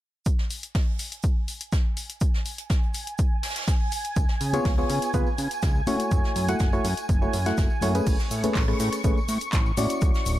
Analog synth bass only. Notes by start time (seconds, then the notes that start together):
4.16 C#2
4.41 C#3
4.65 C#2
4.90 C#3
5.14 C#2
5.38 C#3
5.63 C#2
5.87 C#3
6.12 F#1
6.36 F#2
6.60 F#1
6.85 F#2
7.09 F#1
7.33 F#2
7.58 F#1
7.82 F#2
8.07 A1
8.31 A2
8.55 A1
8.80 A2
9.04 A1
9.29 A2
9.53 A1
9.77 A2
10.02 D2
10.26 D1